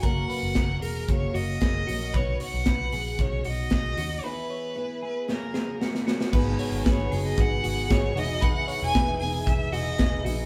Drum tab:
CC |----------------|----------------|----------------|x---------------|
HH |x-o-x-o-x-o-x-o-|x-o-x-o-x-o-x-o-|----------------|--o-x-o-x-o-x-o-|
SD |----o-------o---|----o-------o---|--------o-o-oooo|----o-------o---|
BD |o---o---o---o---|o---o---o---o---|----------------|o---o---o---o---|

CC |----------------|
HH |x-o-x-o-x-o-x-o-|
SD |----o-------o---|
BD |o---o---o---o---|